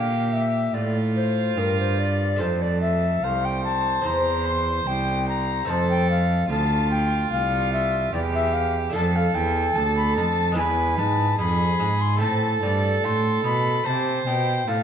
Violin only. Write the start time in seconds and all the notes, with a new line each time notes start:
Already playing: G4
0.74 F4
2.41 A4
3.24 C5
5.68 A4
6.49 F4
8.13 G4
8.95 A4
10.57 B4
11.38 G#4
12.18 A4
13.84 C5
14.68 A4